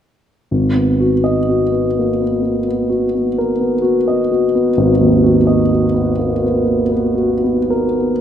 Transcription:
0.51 4.71 G#1 soft
0.75 1.14 B3 soft
1.00 1.38 F#4 soft
1.24 1.62 D#5 soft
1.49 1.87 F#4 soft
1.72 2.10 B3 soft
1.99 2.21 A#3 soft
2.21 2.58 B3 soft
2.42 2.66 A#3 soft
2.68 3.04 B3 soft
2.90 3.26 F#4 soft
3.15 3.50 B3 soft
3.38 3.74 A#4 soft
3.60 3.97 B3 soft
3.82 4.19 F#4 soft
4.08 4.44 D#5 soft
4.32 4.67 F#4 soft
4.55 4.91 B3 soft
4.77 8.21 G#1 soft
5.01 5.37 D#2 soft
5.24 5.61 F#4 soft
5.47 5.85 D#5 soft
5.72 6.10 F#4 soft
5.94 6.32 B3 soft
6.19 6.43 A#3 soft
6.44 6.82 B3 soft
6.65 6.90 A#3 soft
6.91 7.32 B3 soft
7.15 7.57 F#4 soft
7.44 7.85 B3 soft
7.70 8.12 A#4 soft
7.98 8.21 B3 soft

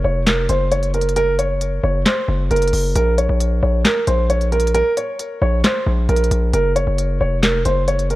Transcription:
0.04 0.47 F1 loud
0.04 0.22 C#5 medium
0.27 0.44 A#4 medium
0.27 snare loud
0.27 clap medium
0.27 closed hi-hat medium
0.49 1.80 F#1 loud
0.49 0.67 C5 medium
0.49 closed hi-hat medium
0.72 0.89 C#5 medium
0.72 closed hi-hat medium
0.83 closed hi-hat soft
0.94 1.12 A#4 medium
0.94 closed hi-hat soft
1.01 closed hi-hat medium
1.09 closed hi-hat medium
1.16 1.34 A#4 loud
1.16 closed hi-hat loud
1.39 1.81 C#5 medium
1.39 closed hi-hat medium
1.61 closed hi-hat medium
1.84 2.05 F#1 loud
1.84 2.01 C#5 medium
2.06 2.48 C5 medium
2.06 snare loud
2.06 clap medium
2.06 closed hi-hat medium
2.28 2.50 F#1 loud
2.51 2.72 F#1 loud
2.51 2.93 A#4 loud
2.51 closed hi-hat soft
2.56 closed hi-hat soft
2.62 closed hi-hat medium
2.68 closed hi-hat medium
2.73 2.95 F#1 loud
2.73 open hi-hat medium
2.95 3.28 A#1 loud
2.95 3.13 A#4 loud
2.95 closed hi-hat loud
3.18 3.60 C#5 medium
3.18 closed hi-hat medium
3.29 3.61 A#1 loud
3.40 closed hi-hat medium
3.63 3.84 A#1 loud
3.63 3.80 C#5 medium
3.85 4.03 A#4 medium
3.85 snare loud
3.85 clap medium
3.85 closed hi-hat medium
4.07 4.83 A#1 loud
4.07 4.25 C5 medium
4.07 closed hi-hat medium
4.30 4.47 C#5 medium
4.30 closed hi-hat medium
4.41 closed hi-hat soft
4.52 4.70 A#4 medium
4.52 closed hi-hat soft
4.60 closed hi-hat medium
4.67 closed hi-hat medium
4.74 4.92 A#4 loud
4.74 closed hi-hat loud
4.97 5.39 C#5 medium
4.97 closed hi-hat medium
5.19 closed hi-hat medium
5.42 5.63 A#1 loud
5.42 5.59 C#5 medium
5.64 6.06 C5 medium
5.64 snare loud
5.64 clap medium
5.64 closed hi-hat medium
5.86 6.08 A#1 loud
6.09 6.30 A#1 loud
6.09 6.51 A#4 medium
6.09 closed hi-hat medium
6.16 closed hi-hat medium
6.24 closed hi-hat medium
6.31 6.53 A#1 loud
6.31 closed hi-hat medium
6.54 6.86 F#1 loud
6.54 6.71 A#4 loud
6.54 closed hi-hat loud
6.76 7.18 C#5 medium
6.76 closed hi-hat medium
6.87 7.19 F#1 loud
6.98 closed hi-hat medium
7.21 7.64 F1 loud
7.21 7.38 C#5 medium
7.43 7.61 A#4 medium
7.43 snare loud
7.43 clap medium
7.43 closed hi-hat medium
7.65 8.16 F#1 loud
7.65 7.83 C5 medium
7.65 closed hi-hat medium
7.88 8.05 C#5 medium
7.88 closed hi-hat medium
7.99 closed hi-hat soft
8.10 8.16 A#4 medium
8.10 closed hi-hat soft

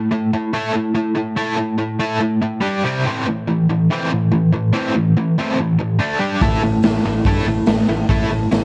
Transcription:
0.12 0.30 A3 medium
0.12 0.31 E4 medium
0.34 0.52 A3 medium
0.34 0.52 E4 medium
0.53 0.73 A3 medium
0.53 0.73 E4 medium
0.53 0.74 A4 loud
0.74 0.93 A3 medium
0.74 0.94 E4 medium
0.95 1.14 A3 medium
0.95 1.14 E4 loud
1.16 1.35 A3 medium
1.16 1.35 E4 medium
1.37 1.56 A3 medium
1.37 1.56 E4 medium
1.37 1.57 A4 loud
1.57 1.77 A3 medium
1.57 1.77 E4 medium
1.78 1.97 A3 medium
1.78 1.98 E4 medium
2.00 2.19 A3 loud
2.00 2.19 E4 loud
2.00 2.20 A4 loud
2.20 2.40 A3 medium
2.20 2.40 E4 medium
2.42 2.61 A3 medium
2.42 2.61 E4 medium
2.61 2.82 G3 medium
2.61 2.82 D4 loud
2.61 2.82 G4 loud
2.84 3.04 C3 medium
2.84 3.04 G3 medium
2.84 3.04 C4 loud
3.04 3.24 A2 medium
3.04 3.25 E3 medium
3.04 3.26 C4 loud
3.27 3.45 A2 medium
3.27 3.45 E3 medium
3.48 3.66 A2 medium
3.48 3.66 E3 medium
3.70 3.88 A2 medium
3.70 3.88 E3 medium
3.91 4.10 A2 loud
3.91 4.10 E3 loud
3.91 4.11 C4 loud
4.11 4.29 A2 medium
4.11 4.30 E3 medium
4.32 4.50 A2 medium
4.32 4.50 E3 medium
4.53 4.71 A2 medium
4.53 4.72 E3 medium
4.73 4.93 A2 medium
4.73 4.93 E3 medium
4.73 4.93 C4 medium
4.95 5.13 A2 medium
4.95 5.14 E3 medium
5.17 5.35 A2 medium
5.17 5.35 E3 medium
5.38 5.57 A2 loud
5.38 5.57 E3 loud
5.38 5.57 C4 loud
5.58 5.76 A2 medium
5.58 5.76 E3 medium
5.79 5.97 A2 medium
5.79 5.98 E3 medium
5.99 6.18 D3 medium
5.99 6.19 A3 medium
5.99 6.19 D4 loud
6.19 6.39 G3 medium
6.19 6.39 D4 medium
6.19 6.40 G4 loud
6.41 6.55 A1 medium
6.41 6.61 A3 medium
6.41 6.61 E4 medium
6.41 6.61 A4 medium
6.41 kick loud
6.41 open hi-hat soft
6.63 6.77 A1 medium
6.63 6.81 A3 medium
6.63 6.81 E4 medium
6.83 6.98 A1 medium
6.83 7.02 A3 medium
6.83 7.02 E4 medium
6.83 snare loud
6.83 open hi-hat medium
7.05 7.19 A1 medium
7.05 7.23 A3 medium
7.05 7.23 E4 medium
7.25 7.39 G2 medium
7.25 7.45 A3 medium
7.25 7.45 E4 loud
7.25 7.46 A4 loud
7.25 kick loud
7.25 open hi-hat medium
7.46 7.60 A1 medium
7.46 7.65 A3 medium
7.46 7.65 E4 medium
7.66 7.81 A1 medium
7.66 7.85 A3 medium
7.66 7.85 E4 medium
7.66 snare loud
7.66 open hi-hat medium
7.88 8.02 A1 medium
7.88 8.06 A3 medium
7.88 8.07 E4 medium
8.09 8.23 A1 medium
8.09 8.28 A3 medium
8.09 8.29 E4 loud
8.09 8.29 A4 medium
8.09 kick loud
8.09 open hi-hat soft
8.31 8.44 A1 medium
8.31 8.49 A3 medium
8.31 8.49 E4 medium
8.51 8.64 A1 medium
8.51 8.64 A3 medium
8.51 8.64 E4 medium
8.51 snare loud
8.51 open hi-hat medium

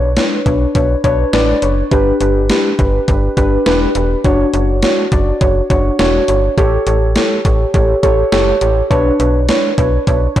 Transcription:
0.00 0.18 B1 medium
0.17 0.38 D4 medium
0.17 0.38 B4 medium
0.17 0.38 C#5 medium
0.17 snare loud
0.17 closed hi-hat medium
0.46 0.66 B1 loud
0.46 0.67 D4 medium
0.46 0.67 B4 medium
0.46 0.67 C#5 medium
0.46 kick loud
0.46 closed hi-hat medium
0.75 0.96 B1 loud
0.75 0.96 D4 medium
0.75 0.96 B4 medium
0.75 0.96 C#5 medium
0.75 kick loud
0.75 closed hi-hat medium
1.04 1.25 B1 loud
1.04 1.25 D4 loud
1.04 1.25 B4 loud
1.04 1.25 C#5 loud
1.04 kick medium
1.04 closed hi-hat medium
1.33 1.54 A1 loud
1.33 1.54 D4 loud
1.33 1.54 B4 loud
1.33 1.54 D5 loud
1.33 snare loud
1.33 closed hi-hat medium
1.62 1.83 F#1 medium
1.62 1.83 D4 medium
1.62 1.83 B4 medium
1.62 1.83 C#5 medium
1.62 closed hi-hat medium
1.91 2.12 G1 loud
1.91 2.12 D4 loud
1.91 2.12 G4 loud
1.91 2.12 B4 loud
1.91 kick loud
1.91 closed hi-hat medium
2.21 2.51 G1 medium
2.21 2.42 D4 medium
2.21 2.42 G4 medium
2.21 2.42 B4 medium
2.21 closed hi-hat medium
2.50 2.71 D4 medium
2.50 2.71 G4 medium
2.50 2.71 B4 medium
2.50 snare loud
2.50 closed hi-hat medium
2.79 2.99 G1 loud
2.79 3.00 D4 medium
2.79 3.00 G4 medium
2.79 3.00 B4 medium
2.79 kick medium
2.79 closed hi-hat medium
3.08 3.29 G1 loud
3.08 3.29 D4 medium
3.08 3.29 G4 medium
3.08 3.29 B4 medium
3.08 kick medium
3.08 closed hi-hat medium
3.37 3.58 G1 loud
3.37 3.58 D4 loud
3.37 3.58 G4 loud
3.37 3.58 B4 loud
3.37 kick medium
3.37 closed hi-hat medium
3.66 3.87 E1 loud
3.66 3.87 D4 loud
3.66 3.87 G4 loud
3.66 3.87 B4 loud
3.66 snare loud
3.66 closed hi-hat medium
3.95 4.16 E1 medium
3.95 4.16 D4 medium
3.95 4.16 G4 medium
3.95 4.16 B4 medium
3.95 closed hi-hat medium
4.24 4.45 F#1 loud
4.24 4.46 D4 loud
4.24 4.46 F#4 loud
4.24 4.46 C#5 loud
4.24 kick loud
4.24 closed hi-hat medium
4.54 4.84 F#1 loud
4.54 4.75 D4 medium
4.54 4.75 F#4 medium
4.54 4.75 C#5 medium
4.54 closed hi-hat medium
4.82 5.04 D4 medium
4.82 5.04 F#4 medium
4.82 5.04 C#5 medium
4.82 snare loud
4.82 closed hi-hat medium
5.12 5.32 F#1 loud
5.12 5.33 D4 medium
5.12 5.33 F#4 medium
5.12 5.33 D5 medium
5.12 kick medium
5.12 closed hi-hat medium
5.41 5.61 F#1 loud
5.41 5.62 D4 medium
5.41 5.62 F#4 medium
5.41 5.62 C#5 medium
5.41 kick medium
5.41 closed hi-hat medium
5.70 5.91 F#1 loud
5.70 5.91 D4 loud
5.70 5.91 F#4 medium
5.70 5.91 C#5 loud
5.70 kick medium
5.70 closed hi-hat medium
5.99 6.20 E1 loud
5.99 6.20 D4 loud
5.99 6.20 F#4 loud
5.99 6.20 C#5 loud
5.99 snare loud
5.99 closed hi-hat medium
6.28 6.49 G1 medium
6.28 6.49 D4 medium
6.28 6.49 F#4 medium
6.28 6.49 C#5 medium
6.28 closed hi-hat medium
6.58 6.78 A1 loud
6.58 6.78 G4 loud
6.58 6.78 A4 loud
6.58 6.79 C#5 loud
6.58 kick loud
6.58 closed hi-hat medium
6.87 7.17 A1 loud
6.87 7.08 G4 medium
6.87 7.08 A4 medium
6.87 7.08 C#5 medium
6.87 closed hi-hat medium
7.16 7.37 G4 medium
7.16 7.37 A4 medium
7.16 7.37 C#5 medium
7.16 snare loud
7.16 closed hi-hat medium
7.45 7.65 A1 loud
7.45 7.66 G4 medium
7.45 7.66 A4 medium
7.45 7.66 C#5 medium
7.45 kick medium
7.45 closed hi-hat medium
7.74 7.95 A1 loud
7.74 7.95 G4 medium
7.74 7.95 A4 medium
7.74 7.95 C#5 medium
7.74 kick loud
7.74 closed hi-hat medium
8.03 8.24 A1 loud
8.03 8.24 G4 loud
8.03 8.24 A4 loud
8.03 8.24 C#5 loud
8.03 kick medium
8.03 closed hi-hat medium
8.32 8.53 F#1 loud
8.32 8.53 G4 loud
8.32 8.53 A4 loud
8.32 8.53 C#5 loud
8.32 snare loud
8.32 closed hi-hat medium
8.61 8.82 A1 medium
8.61 8.82 G4 medium
8.61 8.82 A4 medium
8.61 8.82 C#5 medium
8.61 closed hi-hat medium
8.90 9.11 B1 loud
8.90 9.11 D4 loud
8.90 9.11 B4 loud
8.90 9.11 C#5 loud
8.90 kick loud
8.90 closed hi-hat medium
9.20 9.50 B1 loud
9.20 9.41 D4 medium
9.20 9.41 B4 medium
9.20 9.41 C#5 medium
9.20 closed hi-hat medium
9.49 9.70 D4 medium
9.49 9.70 B4 medium
9.49 9.70 C#5 loud
9.49 snare loud
9.49 closed hi-hat medium
9.78 9.98 B1 loud
9.78 9.99 D4 medium
9.78 9.99 B4 medium
9.78 9.99 C#5 loud
9.78 kick medium
9.78 closed hi-hat medium
10.07 10.28 B1 loud
10.07 10.28 D4 medium
10.07 10.28 B4 medium
10.07 10.28 C#5 medium
10.07 kick loud
10.07 closed hi-hat medium
10.36 10.40 B1 loud
10.36 10.40 D4 loud
10.36 10.40 B4 loud
10.36 10.40 C#5 loud
10.36 kick medium
10.36 closed hi-hat medium

